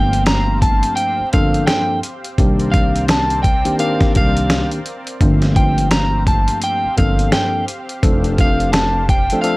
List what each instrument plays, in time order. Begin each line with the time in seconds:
Already playing: upright bass G1, tine electric piano G2 F3 A3 A#3 C4 D4, analog synth pad C4 G4 C5 F5, clean electric guitar G5
0.13 closed hi-hat
0.26 clean electric guitar A#5, snare, closed hi-hat
0.62 clean electric guitar A5, kick, closed hi-hat
0.83 closed hi-hat
0.96 clean electric guitar G5, closed hi-hat
1.19 muted upright bass stroke
1.33 upright bass G1, tine electric piano G2 F3 A#3 C4 D4 A4, clean electric guitar F5, kick, closed hi-hat
1.54 closed hi-hat
1.67 clean electric guitar G5, snare, closed hi-hat
2.03 closed hi-hat
2.25 closed hi-hat
2.38 upright bass C2, tine electric piano D#3 A#3 C4 D4 G4, analog synth pad C4 A#4 C5 D5, kick, closed hi-hat
2.60 closed hi-hat
2.72 clean electric guitar F5, kick, closed hi-hat
2.96 closed hi-hat
3.08 clean electric guitar A5, snare, closed hi-hat
3.30 closed hi-hat
3.43 clean electric guitar G5, kick, closed hi-hat
3.65 tine electric piano D#3 A#3 C4 D4 G4, closed hi-hat
3.79 tine electric piano D#3 A#3 C4 D4 G4, clean electric guitar F5, closed hi-hat
4.01 muted upright bass stroke, kick, snare, closed hi-hat
4.15 upright bass C2, clean electric guitar F5, kick, closed hi-hat
4.37 closed hi-hat
4.50 snare, closed hi-hat
4.71 closed hi-hat
4.86 closed hi-hat
5.07 closed hi-hat
5.19 upright bass G1, tine electric piano G2 F3 A3 A#3 C4 D4, analog synth pad C4 G4 C5 F5, kick, closed hi-hat
5.42 snare, closed hi-hat
5.56 clean electric guitar G5, kick, closed hi-hat
5.78 closed hi-hat
5.91 clean electric guitar A#5, snare, closed hi-hat
6.27 clean electric guitar A5, kick, closed hi-hat
6.48 closed hi-hat
6.62 clean electric guitar G5, closed hi-hat
6.84 muted upright bass stroke
6.97 upright bass G1, tine electric piano G2 F3 A#3 C4 D4 A4, clean electric guitar F5, kick, closed hi-hat
7.19 closed hi-hat
7.32 clean electric guitar G5, snare, closed hi-hat
7.68 closed hi-hat
7.89 closed hi-hat
8.02 upright bass F1, tine electric piano F3 A3 C4 D4 A4, analog synth pad D4 C5, kick, closed hi-hat
8.24 closed hi-hat
8.38 clean electric guitar F5, kick, closed hi-hat
8.60 closed hi-hat
8.73 clean electric guitar A5, snare, closed hi-hat
9.09 clean electric guitar G5, kick, closed hi-hat
9.30 tine electric piano F3 A3 C4 D4 A4, closed hi-hat
9.42 tine electric piano F3 A3 C4 D4 A4, clean electric guitar F5, closed hi-hat